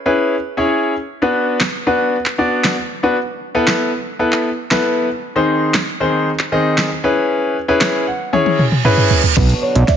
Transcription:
0.06 C#4 E4 G#4 B4
0.57 C#4 E4 G#4 C#5
1.22 B3 D4 F#4 B4
1.61 snare, clap
1.87 B3 D4 F#4 B4
2.26 clap
2.38 B3 D4 F#4 D5
2.64 snare, clap
3.03 B3 D4 F#4 B4
3.55 B3 E4 A4 B4
3.68 snare, clap
4.19 B3 E4 A4 B4
4.32 clap
4.71 B3 E4 A4 B4, snare, clap
5.36 D#3 C4 D#4 G#4 C5
5.74 snare, clap
6.00 D#3 C4 D#4 G#4 C5
6.39 clap
6.52 D#3 C4 D#4 G#4 D#5
6.78 snare, clap
7.04 C#4 E4 G#4 B4
7.68 C#4 E4 G#4 B4
7.81 snare, clap
8.07 F#5
8.33 C#4 E4 G#4 C#5 G#5, high tom, reverse cymbal
8.46 high tom
8.59 mid tom
8.72 mid tom
8.85 C#4 E4 G#4 B4 B5, mid tom
8.98 mid tom
9.11 floor tom
9.24 floor tom
9.36 B1 B2 D3 F#3 B3 D4 F#4 B4, kick, snare, closed hi-hat, crash, riser
9.49 closed hi-hat
9.62 C#5, muted clean electric guitar stroke
9.75 B1 D4, closed hi-hat
9.88 E4 D5, kick, snare, closed hi-hat

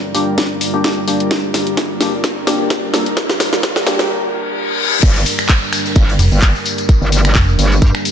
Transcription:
Already playing: G3 D4 F4 A#4 D5, riser
0.14 A#3 D4 G4, open hi-hat
0.38 kick, snare, closed hi-hat
0.61 open hi-hat
0.74 A#3 D4 G4
0.84 A#3 D4 G4, kick, snare, closed hi-hat
1.08 A#3 D4 G4, open hi-hat
1.20 closed hi-hat
1.31 kick, snare, closed hi-hat
1.54 snare, open hi-hat
1.67 closed hi-hat
1.77 kick, snare, closed hi-hat
2.01 A#3 D4 G4, snare, open hi-hat
2.24 kick, snare, closed hi-hat
2.47 A#3 D4 G4, snare, open hi-hat
2.70 kick, snare, closed hi-hat
2.94 A#3 D4 A4, snare, open hi-hat
3.06 closed hi-hat
3.17 kick, snare, closed hi-hat
3.30 snare, closed hi-hat
3.40 snare, open hi-hat
3.53 snare, closed hi-hat
3.63 kick, snare, closed hi-hat
3.76 snare
3.87 A#3 D4 G4, snare, open hi-hat
3.99 snare, closed hi-hat
4.10 reverse cymbal
5.03 G1 G3 D4 A#4, kick, closed hi-hat, crash, tambourine, downlifter
5.16 snare, tambourine
5.26 open hi-hat, tambourine
5.39 finger snap, closed hi-hat, tambourine
5.49 kick, snare, clap, closed hi-hat, tambourine
5.62 tambourine
5.73 finger snap, open hi-hat, tambourine
5.85 snare, tambourine
5.95 G1, kick, closed hi-hat, tambourine
6.09 closed hi-hat, tambourine
6.19 F1, open hi-hat, tambourine
6.32 G1, tambourine
6.42 kick, snare, clap, closed hi-hat, tambourine
6.55 snare, tambourine
6.65 open hi-hat, tambourine
6.78 closed hi-hat, tambourine
6.89 kick, closed hi-hat, tambourine
7.02 G1, tambourine
7.12 snare, open hi-hat, tambourine
7.25 finger snap, closed hi-hat, tambourine
7.35 F1, kick, snare, clap, closed hi-hat, tambourine
7.49 tambourine
7.59 G1, open hi-hat, tambourine
7.71 snare, tambourine
7.82 G2, kick, closed hi-hat, tambourine
7.95 finger snap, tambourine
8.05 open hi-hat, tambourine

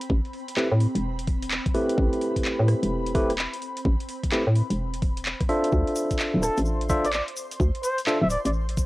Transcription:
Already playing: C4 B5
0.02 closed hi-hat
0.10 A1, kick
0.25 closed hi-hat
0.34 open hi-hat
0.48 closed hi-hat
0.57 A3 C4 E4 G4 B4, clap
0.72 A2
0.80 open hi-hat
0.95 E1, closed hi-hat
1.19 closed hi-hat
1.27 kick, open hi-hat
1.42 closed hi-hat
1.51 clap
1.66 kick, closed hi-hat
1.74 A3 C4 E4 G4 B4, open hi-hat
1.89 closed hi-hat
1.98 A1, kick
2.13 closed hi-hat
2.21 open hi-hat
2.36 kick, closed hi-hat
2.45 clap
2.59 A2
2.68 cross-stick, open hi-hat
2.83 E1, closed hi-hat
3.06 closed hi-hat
3.15 A3 C4 E4 G4 B4, kick, open hi-hat
3.30 cross-stick, closed hi-hat
3.38 clap
3.53 closed hi-hat
3.62 open hi-hat
3.77 closed hi-hat
3.85 A1, kick
4.00 closed hi-hat
4.09 open hi-hat
4.24 kick, closed hi-hat
4.32 A3 C4 E4 G4 B4, clap
4.47 A2
4.55 open hi-hat
4.70 E1, closed hi-hat
4.94 closed hi-hat
5.02 kick, open hi-hat
5.17 closed hi-hat
5.26 clap
5.41 kick, cross-stick, closed hi-hat
5.49 D4 F4 A4 C5 E5, open hi-hat
5.64 closed hi-hat
5.72 D2 C5 C6, kick, shaker
5.88 closed hi-hat
5.96 open hi-hat, shaker
6.11 kick, closed hi-hat, shaker
6.19 clap, shaker
6.34 D1
6.43 A4, cross-stick, open hi-hat, shaker
6.57 A1, closed hi-hat, shaker
6.65 shaker
6.81 closed hi-hat
6.89 D4 F4 A4 C5 E5, kick, open hi-hat, shaker
7.05 D5, cross-stick, closed hi-hat, shaker
7.13 D5, clap, shaker
7.28 closed hi-hat
7.37 open hi-hat, shaker
7.51 closed hi-hat, shaker
7.60 D2, kick, shaker
7.75 closed hi-hat
7.83 C5, open hi-hat, shaker
7.98 closed hi-hat, shaker
8.07 D4 F4 A4 C5 E5, clap, shaker
8.22 D1 E5
8.30 D5, open hi-hat, shaker
8.45 A1 D5, closed hi-hat, shaker
8.53 shaker
8.69 closed hi-hat
8.77 kick, open hi-hat, shaker

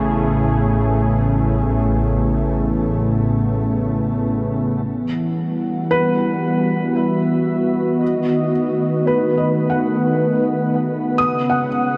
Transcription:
Already playing: A1 C#3 A3 B3 E4 G#4
4.86 E3 F#5
5.06 G3
5.31 F#4
5.91 B4
6.28 B4
6.95 E5
7.99 D#3 D#5
8.20 A3
9.06 B4
9.38 D#5
9.70 F#5
11.18 C#3 F#5 D#6
11.39 G#3
11.50 F#5
11.76 E4

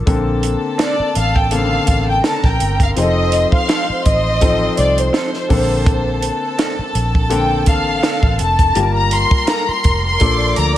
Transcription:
0.06 A#1 D3 A#3 C4 A4 A5, kick, closed hi-hat
0.43 closed hi-hat
0.78 C4 D4 A4 D5, snare, closed hi-hat
0.99 muted fingered electric bass stroke
1.15 A1 F5, closed hi-hat
1.36 G5, kick
1.51 C#3 A#3 C4 A4 F5, closed hi-hat
1.57 D3
1.87 A1, kick, closed hi-hat
2.09 G5
2.24 C4 D4 A4 A#4 A5 A#5, snare, closed hi-hat
2.43 A#1 G5, kick, snare
2.60 G1, closed hi-hat
2.80 F5, kick, closed hi-hat
2.96 F1 F3 C4 D#4 G#4 C5 D#5 C6, closed hi-hat
3.03 A4
3.32 closed hi-hat
3.52 F5, kick
3.68 C4 D#4 A4, snare, closed hi-hat
3.89 muted fingered electric bass stroke
4.06 A1 D#5, kick, closed hi-hat
4.41 F3 C4 D#4 A4, kick, closed hi-hat
4.77 C2 D5, closed hi-hat
4.98 C5, closed hi-hat
5.13 C4 D#4 A4, snare, closed hi-hat
5.34 snare
5.49 A#1 D3 A#3 C4 A4 A5, kick, open hi-hat
5.86 kick, closed hi-hat
6.22 closed hi-hat
6.58 C4 D4 A4, snare, closed hi-hat
6.79 muted fingered electric bass stroke
6.95 A#1, closed hi-hat
7.15 kick
7.30 D3 A#3 C4 A4 G5, closed hi-hat
7.66 A1 F5, kick, closed hi-hat
8.03 C4 D4 A4, snare, closed hi-hat
8.23 A1, kick
8.39 F1 A5, closed hi-hat
8.59 kick, closed hi-hat
8.75 G1 G3 A#3 F4 G4 A#4 A#5, closed hi-hat
8.83 A#4
8.97 A#5
9.11 C6, closed hi-hat
9.31 kick
9.47 A#3 F4 A4 A#5, snare, closed hi-hat
9.68 C6, muted fingered electric bass stroke
9.84 F1, kick, closed hi-hat
10.06 C6
10.20 A#1 F3 A#3 D4 A4 D5 D6, kick, closed hi-hat
10.56 D2 A#5, closed hi-hat

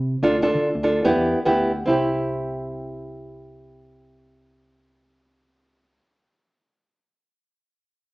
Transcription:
Already playing: C3
0.22 D2 D4 F4 A4
0.42 D4 F4 A4
0.55 D3
0.75 D2
0.83 D4 F4 A4
1.04 E2 B3 E4 G4
1.16 E2
1.45 D2 B3 E4 G4
1.86 C2 C4 E4 G4

